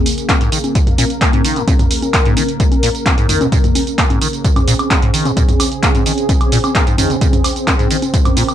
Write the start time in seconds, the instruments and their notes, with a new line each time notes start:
Already playing: analog synth pad C#3 A#3 G#4
0.06 open hi-hat, tambourine
0.18 closed hi-hat, tambourine
0.29 acid bass A#3, kick, clap, closed hi-hat, tambourine, high conga
0.41 acid bass G#2, closed hi-hat, tambourine
0.52 acid bass D#3, open hi-hat, tambourine
0.64 closed hi-hat, tambourine, high conga
0.75 acid bass A#2, analog synth pad A#4, kick, closed hi-hat, tambourine
0.87 closed hi-hat, mid tom, tambourine
0.98 acid bass A#2, open hi-hat, tambourine, high conga
1.10 closed hi-hat, tambourine
1.21 acid bass A#3, kick, clap, closed hi-hat, tambourine
1.33 acid bass G#2, closed hi-hat, tambourine, high conga
1.45 acid bass D#3, open hi-hat, tambourine
1.56 acid bass A#2, closed hi-hat, tambourine
1.68 acid bass A#2, kick, closed hi-hat, tambourine, high conga
1.79 closed hi-hat, mid tom, tambourine
1.91 open hi-hat, tambourine
2.02 closed hi-hat, tambourine, high conga
2.14 acid bass A#3, kick, clap, closed hi-hat, tambourine
2.25 acid bass G#2, closed hi-hat, tambourine
2.37 acid bass D#3, open hi-hat, tambourine, high conga
2.49 closed hi-hat, tambourine
2.60 acid bass A#2, kick, closed hi-hat, tambourine
2.72 closed hi-hat, tambourine, high conga
2.83 acid bass A#2, open hi-hat, tambourine
2.95 closed hi-hat, tambourine
3.06 acid bass A#3, kick, clap, closed hi-hat, tambourine, high conga
3.18 acid bass G#2, closed hi-hat, tambourine
3.29 acid bass D#3, mid tom, open hi-hat, tambourine
3.41 acid bass A#2, closed hi-hat, tambourine, high conga
3.52 acid bass A#2, kick, closed hi-hat, tambourine
3.64 closed hi-hat, mid tom, tambourine
3.75 open hi-hat, tambourine, high conga
3.87 closed hi-hat, tambourine
3.98 acid bass A#3, kick, clap, closed hi-hat, tambourine
4.10 acid bass G#2, closed hi-hat, tambourine, high conga
4.21 acid bass D#3, open hi-hat, tambourine
4.33 closed hi-hat, tambourine
4.44 acid bass A#2, analog synth pad C4 G#4, kick, closed hi-hat, tambourine
4.56 closed hi-hat, mid tom, tambourine, high conga, high woodblock
4.68 acid bass A#2, open hi-hat, tambourine
4.79 closed hi-hat, tambourine, high woodblock
4.91 acid bass A#3, kick, clap, closed hi-hat, tambourine, high conga
5.02 acid bass G#2, closed hi-hat, tambourine
5.14 acid bass D#3, open hi-hat, tambourine
5.25 acid bass A#2, closed hi-hat, tambourine, high conga
5.37 acid bass A#2, kick, closed hi-hat, tambourine
5.49 closed hi-hat, mid tom, tambourine
5.60 open hi-hat, tambourine, high conga, high woodblock
5.72 closed hi-hat, tambourine
5.83 acid bass A#3, kick, clap, closed hi-hat, tambourine
5.95 acid bass G#2, closed hi-hat, tambourine, high conga
6.06 acid bass D#3, open hi-hat, tambourine
6.18 closed hi-hat, tambourine
6.29 acid bass A#2, kick, closed hi-hat, tambourine, high conga
6.41 closed hi-hat, tambourine, high woodblock
6.52 acid bass A#2, open hi-hat, tambourine
6.64 closed hi-hat, tambourine, high conga, high woodblock
6.75 acid bass A#3, kick, clap, closed hi-hat, tambourine
6.87 acid bass G#2, closed hi-hat, tambourine
6.98 acid bass D#3, mid tom, open hi-hat, tambourine, high conga
7.10 acid bass A#2, closed hi-hat, tambourine
7.21 acid bass A#2, kick, closed hi-hat, tambourine
7.33 closed hi-hat, mid tom, tambourine, high conga
7.44 open hi-hat, tambourine, high woodblock
7.56 closed hi-hat, tambourine
7.67 acid bass A#3, kick, clap, closed hi-hat, tambourine, high conga
7.79 acid bass G#2, closed hi-hat, tambourine
7.91 acid bass D#3, open hi-hat, tambourine
8.02 closed hi-hat, tambourine, high conga
8.14 acid bass A#2, analog synth pad A#4, kick, closed hi-hat, tambourine
8.25 closed hi-hat, mid tom, tambourine, high woodblock
8.37 acid bass A#2, open hi-hat, tambourine, high conga
8.49 closed hi-hat, tambourine, high woodblock